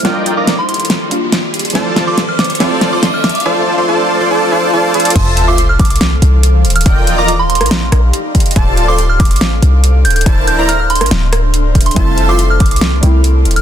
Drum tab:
CC |--------------------------------|--------------------------------|--------------------------------|x-------------------------------|
HH |x---x---x---xxxxx---x---x---xxxx|x---x---x---xxxxx---x---x---xxxx|----------------------------xxxx|x---x---x---xxxxx---x---x---xxxx|
SD |o-------o-------o-------o-------|o---o---o---o---o---o---o---o---|--------------------------------|----------------o---------------|
BD |--------------------------------|--------------------------------|--------------------------------|o-----------o-------------------|

CC |--------------------------------|--------------------------------|--------------------------------|--------------------------------|
HH |x---x---x---xxxxx---x---x---xxxx|x---x---x---xxxxx---x---x---xxxx|x---x---x---xxxxx---x---x---xxxx|x---x---x---xxxxx---x---x---xxx-|
SD |--------------r-o---r-----------|----------------o---------------|--------------r-o---r-----------|----------------o---------------|
BD |o---------------------------o---|o-----------o-------------------|o---------------------------o---|o-----------o-------------------|